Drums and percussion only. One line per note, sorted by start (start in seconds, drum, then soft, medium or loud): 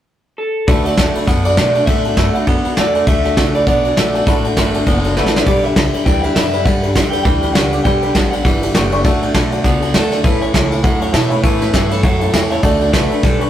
0.68 kick loud
0.68 ride medium
0.85 ride medium
0.97 kick medium
0.97 snare loud
0.97 ride medium
1.15 ride medium
1.27 kick loud
1.27 snare soft
1.27 ride medium
1.45 ride medium
1.57 snare loud
1.57 ride medium
1.75 ride medium
1.87 kick loud
1.87 ride medium
2.05 ride medium
2.17 kick medium
2.17 snare loud
2.17 ride medium
2.35 ride medium
2.47 kick loud
2.47 ride medium
2.65 ride medium
2.77 snare loud
2.77 ride medium
2.95 ride medium
3.07 kick loud
3.07 ride medium
3.25 snare soft
3.25 ride medium
3.37 kick medium
3.37 snare loud
3.37 ride medium
3.55 ride medium
3.67 kick loud
3.67 ride medium
3.85 ride medium
3.97 snare loud
3.97 ride medium
4.15 ride medium
4.27 kick loud
4.27 snare soft
4.27 ride medium
4.44 ride medium
4.57 kick medium
4.57 snare loud
4.57 ride medium
4.74 ride medium
4.86 kick loud
4.86 ride medium
5.04 ride medium
5.17 snare medium
5.26 snare medium
5.36 snare loud
5.47 kick loud
5.47 ride medium
5.64 ride medium
5.76 kick medium
5.76 snare loud
5.76 ride medium
5.94 ride medium
6.06 kick loud
6.06 snare soft
6.06 ride medium
6.24 ride medium
6.36 snare loud
6.36 ride medium
6.53 ride medium
6.66 kick loud
6.66 ride medium
6.83 ride medium
6.95 kick medium
6.95 snare loud
6.95 ride medium
7.13 ride medium
7.25 kick loud
7.25 snare soft
7.25 ride medium
7.42 ride medium
7.55 snare loud
7.55 ride medium
7.72 ride medium
7.85 kick loud
7.85 ride medium
8.02 ride medium
8.15 kick medium
8.15 snare loud
8.15 ride medium
8.33 ride medium
8.45 kick loud
8.45 snare soft
8.45 ride medium
8.63 ride medium
8.75 snare loud
8.75 ride loud
8.92 ride medium
9.05 kick loud
9.05 snare soft
9.05 ride medium
9.22 ride medium
9.34 kick medium
9.34 snare loud
9.34 ride medium
9.52 ride medium
9.64 kick loud
9.64 snare soft
9.64 ride medium
9.82 ride medium
9.94 snare loud
9.94 ride loud
10.12 snare soft
10.12 ride medium
10.24 kick loud
10.24 ride medium
10.42 ride medium
10.54 kick medium
10.54 snare loud
10.54 ride medium
10.72 ride medium
10.84 kick loud
10.84 ride medium
11.01 ride medium
11.14 snare loud
11.14 ride medium
11.31 ride medium
11.44 kick loud
11.44 ride medium
11.61 snare soft
11.61 ride medium
11.74 kick medium
11.74 snare loud
11.74 ride medium
11.91 ride medium
12.03 kick loud
12.03 ride medium
12.21 ride medium
12.34 snare loud
12.34 ride medium
12.51 ride medium
12.63 kick loud
12.63 ride loud
12.81 ride medium
12.93 kick medium
12.93 snare loud
12.93 ride medium
13.11 ride medium
13.23 kick loud
13.23 snare soft
13.23 ride medium
13.41 ride medium